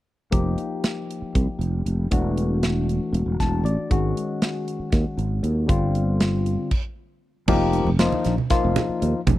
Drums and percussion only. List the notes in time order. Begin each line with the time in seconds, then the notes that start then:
0.32 kick, closed hi-hat
0.58 closed hi-hat
0.84 snare, closed hi-hat
1.11 closed hi-hat
1.35 kick, closed hi-hat
1.61 closed hi-hat
1.86 closed hi-hat
2.11 kick, closed hi-hat
2.37 closed hi-hat
2.63 snare, closed hi-hat
2.89 closed hi-hat
3.14 closed hi-hat
3.40 kick, snare, closed hi-hat
3.66 closed hi-hat
3.91 kick, closed hi-hat
4.17 closed hi-hat
4.42 snare, closed hi-hat
4.68 closed hi-hat
4.92 kick, snare, closed hi-hat
5.19 closed hi-hat
5.44 closed hi-hat
5.69 kick, closed hi-hat
5.95 closed hi-hat
6.20 snare, closed hi-hat
6.46 closed hi-hat
6.71 kick, crash
7.48 kick, crash, high conga, low conga
7.73 closed hi-hat
7.87 low conga
7.99 snare, closed hi-hat
8.12 high conga, low conga
8.24 snare, closed hi-hat, low conga
8.38 low conga
8.50 kick, snare, closed hi-hat
8.76 snare, closed hi-hat, high conga, low conga
8.89 low conga
9.02 closed hi-hat
9.27 kick, closed hi-hat, high conga, low conga